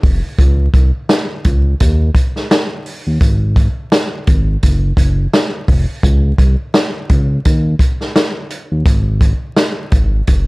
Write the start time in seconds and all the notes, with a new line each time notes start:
0.03 F1, kick, open hi-hat
0.39 C#2, kick, closed hi-hat
0.74 C2, kick, closed hi-hat
1.09 snare, closed hi-hat
1.44 C#2, kick, closed hi-hat
1.80 D#2, kick, closed hi-hat
2.15 kick, closed hi-hat
2.36 snare
2.51 snare, closed hi-hat
2.86 open hi-hat
3.07 D#2
3.21 G#1, kick, closed hi-hat
3.56 kick, closed hi-hat
3.92 snare, closed hi-hat
4.27 G#1, kick, closed hi-hat
4.63 F#1, kick, closed hi-hat
4.97 F#1, kick, closed hi-hat
5.33 snare, closed hi-hat
5.68 F1, kick, open hi-hat
6.03 C#2, kick, closed hi-hat
6.38 C2, kick, closed hi-hat
6.74 snare, closed hi-hat
7.09 C#2, kick, closed hi-hat
7.45 D#2, kick, closed hi-hat
7.79 kick, closed hi-hat
8.01 snare
8.16 snare, closed hi-hat
8.50 closed hi-hat
8.72 D#2
8.86 G#1, kick, closed hi-hat
9.21 kick, closed hi-hat
9.56 snare, closed hi-hat
9.92 G#1, kick, closed hi-hat
10.27 F#1, kick, closed hi-hat